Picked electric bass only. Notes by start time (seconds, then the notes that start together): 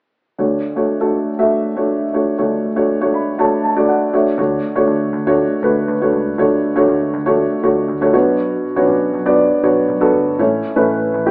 4.38 D2
4.76 D2
4.88 D2
5.13 D2
5.63 D2
5.88 D2
6.12 C#2
6.38 D2
6.76 D2
6.88 D2
7.14 D2
7.64 D2
7.88 D2
8.14 B1
8.76 B1
8.89 B1
9.14 B1
9.64 B1
9.89 B1
10.14 G1
10.39 A1
10.77 A1
10.90 A1
11.14 A1